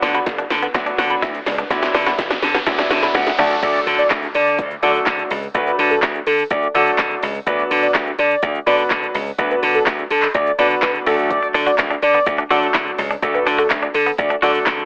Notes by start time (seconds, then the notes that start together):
Already playing: F#3 B3 D4 F#4, riser
0.02 D3 D4 C6, snare, open hi-hat, shaker
0.14 F#4 B5, closed hi-hat, shaker
0.26 F#1, kick, snare, closed hi-hat, shaker
0.38 D4, closed hi-hat, shaker
0.50 D3, muted clean electric guitar stroke, snare, open hi-hat, shaker
0.62 B3, closed hi-hat, shaker
0.74 D2 F#3 B3 D4 F#4 C6, muted clean electric guitar stroke, kick, snare, closed hi-hat, shaker
0.86 D4, closed hi-hat, shaker
0.98 D3 F#4, snare, open hi-hat, shaker
1.10 B5, closed hi-hat, shaker
1.22 D2 E4 B4, kick, snare, closed hi-hat, shaker
1.35 closed hi-hat, shaker
1.46 C#2 D4, muted clean electric guitar stroke, snare, open hi-hat, shaker
1.58 B3 D4, closed hi-hat, shaker
1.70 D2 F#3 B3 D4 E4 C6, kick, snare, closed hi-hat, shaker
1.82 C6, muted clean electric guitar stroke, snare, closed hi-hat, shaker
1.94 D3 D4 C6, snare, open hi-hat, shaker
2.06 F#4 B5, snare, closed hi-hat, shaker
2.18 F#1, kick, snare, closed hi-hat, shaker
2.30 D4, snare, closed hi-hat, shaker
2.42 D3, muted clean electric guitar stroke, snare, open hi-hat, shaker
2.54 B3, snare, closed hi-hat, shaker
2.66 D2 F#3 B3 D4 E4 C6, muted clean electric guitar stroke, kick, snare, closed hi-hat, shaker
2.79 D4, snare, closed hi-hat, shaker
2.91 D3 F#4, snare, open hi-hat, shaker
3.03 B5, snare, closed hi-hat, shaker
3.14 D2 B4 F#5, snare, closed hi-hat, shaker
3.27 snare, closed hi-hat, shaker
3.38 D2 F#3 A3 D4 F#4 A5, open hi-hat, shaker
3.51 A3, closed hi-hat, shaker
3.62 D2 F#3 A3 D4 F#4 A4 D5, kick, closed hi-hat, crash, downlifter, shaker
3.75 shaker
3.87 D3, open hi-hat, shaker
3.98 D5, shaker
4.11 D2, kick, snare, clap, closed hi-hat, shaker
4.23 shaker
4.34 D3 D5, open hi-hat, shaker
4.47 shaker
4.58 D2, kick, closed hi-hat, shaker
4.71 shaker
4.82 D3 F#3 A3 D4 F#4 A4 D5, open hi-hat, shaker
4.94 shaker
5.06 D3, kick, snare, clap, closed hi-hat, shaker
5.19 shaker
5.30 C#2, open hi-hat, shaker
5.43 shaker
5.54 D2 F#3 A3 D4 F#4 B4, kick, closed hi-hat, shaker
5.67 B4, shaker
5.79 D3, open hi-hat, shaker
5.91 A4, shaker
6.03 D2, kick, snare, clap, closed hi-hat, shaker
6.15 shaker
6.26 D3 A4, open hi-hat, shaker
6.39 shaker
6.50 D2 D5, kick, closed hi-hat, shaker
6.63 shaker
6.74 D3 F#3 A3 D4 F#4 A4 D5, open hi-hat, shaker
6.87 shaker
6.99 D3, kick, snare, clap, closed hi-hat, shaker
7.11 shaker
7.23 C#2, open hi-hat, shaker
7.35 shaker
7.46 D2 F#3 B3 D4 F#4 B4 D5, kick, closed hi-hat, shaker
7.59 shaker
7.71 D3, open hi-hat, shaker
7.83 D5, shaker
7.95 D2, kick, snare, clap, closed hi-hat, shaker
8.07 shaker
8.19 D3 D5, open hi-hat, shaker
8.31 shaker
8.43 D2, kick, closed hi-hat, shaker
8.55 shaker
8.66 D3 F#3 B3 D4 F#4 B4 D5, open hi-hat, shaker
8.79 shaker
8.91 D3, kick, snare, clap, closed hi-hat, shaker
9.03 shaker
9.15 C#2, open hi-hat, shaker
9.27 shaker
9.38 D2 F#3 B3 D4 F#4 B4, kick, closed hi-hat, shaker
9.51 B4, shaker
9.62 D3, open hi-hat, shaker
9.75 A4, shaker
9.86 D2, kick, snare, clap, closed hi-hat, shaker
9.99 shaker
10.10 D3 A4, open hi-hat, shaker
10.22 clap, shaker
10.34 D2 D5, kick, closed hi-hat, shaker
10.46 shaker
10.58 D3 F#3 B3 D4 F#4 B4 D5, open hi-hat, shaker
10.70 shaker
10.82 D3 B4, kick, snare, clap, closed hi-hat, shaker
10.95 shaker
11.06 D2 F#3 A3 D4 F#4 A4, open hi-hat, shaker
11.18 shaker
11.30 D5, kick, closed hi-hat, shaker
11.43 muted clean electric guitar stroke, shaker
11.54 D3 D4, open hi-hat, shaker
11.66 F#4 D5, shaker
11.78 D2, kick, snare, clap, closed hi-hat, shaker
11.91 D4, shaker
12.02 D3 D5, muted clean electric guitar stroke, open hi-hat, shaker
12.14 B3, shaker
12.26 D2, muted clean electric guitar stroke, kick, closed hi-hat, shaker
12.38 D4, shaker
12.50 D3 F#3 A3 D4 F#4 A4 D5, open hi-hat, shaker
12.62 shaker
12.74 D3 E4, kick, snare, clap, closed hi-hat, shaker
12.87 shaker
12.98 C#2, muted clean electric guitar stroke, open hi-hat, shaker
13.11 D4, shaker
13.22 D2 F#3 A3 D4 F#4 A4, kick, closed hi-hat, shaker
13.34 B4, muted clean electric guitar stroke, shaker
13.46 D3 D4, open hi-hat, shaker
13.58 F#4 A4, shaker
13.70 D2, kick, snare, clap, closed hi-hat, shaker
13.83 D4, shaker
13.94 D3 A4, muted clean electric guitar stroke, open hi-hat, shaker
14.06 B3, shaker
14.18 D2 D5, muted clean electric guitar stroke, kick, closed hi-hat, shaker
14.30 D4, shaker
14.42 D3 F#3 A3 D4 F#4 A4 D5, open hi-hat, shaker
14.55 shaker
14.66 D3, kick, snare, clap, closed hi-hat, shaker
14.79 shaker